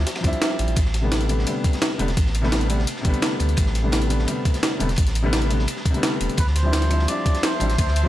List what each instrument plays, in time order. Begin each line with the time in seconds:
0.06 snare, closed hi-hat, ride
0.15 snare, ride
0.21 sub bass D2, grand piano F3 G3 C4, kick, closed hi-hat, ride
0.26 grand piano D4 E4
0.33 closed hi-hat
0.41 snare, closed hi-hat, ride
0.59 sub bass A1, closed hi-hat, ride
0.68 sub bass A1, closed hi-hat
0.76 sub bass A1, kick, closed hi-hat, ride
0.85 snare
0.94 snare, closed hi-hat, ride
1.01 grand piano C3 D3 G3 A3 B3
1.12 snare, closed hi-hat, ride
1.21 closed hi-hat
1.28 grand piano C3 D3 G3 A3 B3, closed hi-hat, ride
1.39 snare
1.43 grand piano C3 D3 G3, closed hi-hat, ride
1.49 grand piano A3 B3
1.64 kick, closed hi-hat, ride
1.73 snare, closed hi-hat
1.82 snare, closed hi-hat, ride
1.98 sub bass E1, grand piano C3 D3 G3 A3 B3, closed hi-hat, ride
2.08 snare, closed hi-hat
2.17 sub bass A1, kick, closed hi-hat, ride
2.26 snare
2.35 closed hi-hat, ride
2.42 grand piano C3 D3 G3 A3 B3, snare
2.52 snare, closed hi-hat, ride
2.61 closed hi-hat
2.68 grand piano C3 D3 G3 A3 B3, closed hi-hat, ride
2.79 snare
2.87 closed hi-hat, ride
2.96 snare
3.01 sub bass A1, grand piano C3 D3 G3, kick, closed hi-hat, ride
3.07 grand piano A3 B3
3.14 closed hi-hat
3.22 snare, closed hi-hat, ride
3.40 sub bass D2, closed hi-hat, ride
3.49 closed hi-hat
3.57 sub bass A1, kick, closed hi-hat, ride
3.66 snare
3.75 snare, closed hi-hat, ride
3.82 grand piano C3 D3 G3 A3 B3
3.92 snare, closed hi-hat, ride
4.02 closed hi-hat
4.09 grand piano C3 D3 G3 A3 B3, closed hi-hat, ride
4.19 snare
4.24 grand piano C3 D3 G3, closed hi-hat, ride
4.30 grand piano A3 B3
4.45 kick, closed hi-hat, ride
4.54 snare, closed hi-hat
4.63 snare, closed hi-hat, ride
4.79 sub bass E1, grand piano C3 D3 G3 A3 B3, closed hi-hat, ride
4.89 snare, closed hi-hat
4.96 sub bass A1, kick, closed hi-hat, ride
5.07 snare, closed hi-hat
5.15 closed hi-hat, ride
5.23 grand piano C3 D3 G3 A3 B3
5.33 snare, closed hi-hat, ride
5.42 closed hi-hat
5.49 grand piano C3 D3 G3 A3 B3, closed hi-hat, ride
5.59 snare
5.68 closed hi-hat, ride
5.76 snare
5.85 kick, closed hi-hat, ride
5.91 grand piano C3 D3 G3, closed hi-hat
5.96 grand piano A3 B3
6.03 snare, closed hi-hat, ride
6.20 sub bass E1, closed hi-hat, ride
6.29 closed hi-hat
6.37 sub bass D2, muted trumpet B4, ambient pad E5 A5 C6, kick, closed hi-hat, ride
6.47 snare
6.55 muted trumpet C5, snare, closed hi-hat, ride
6.63 grand piano F3 G3 C4 D4 E4
6.73 snare, closed hi-hat, ride
6.82 cross-stick, closed hi-hat
6.89 grand piano F3 G3 C4 D4 E4, cross-stick, closed hi-hat, ride
6.99 snare
7.05 grand piano F3 G3 C4, muted trumpet D5, closed hi-hat, ride
7.10 grand piano D4 E4
7.26 kick, closed hi-hat, ride
7.34 snare, closed hi-hat
7.43 muted trumpet C5, snare, closed hi-hat, ride
7.59 sub bass A1, grand piano F3 G3 C4 D4 E4, closed hi-hat, ride
7.70 snare, closed hi-hat
7.78 sub bass D2, muted trumpet C5, kick, closed hi-hat, ride
7.88 snare
7.96 closed hi-hat, ride
8.03 grand piano F3 G3 C4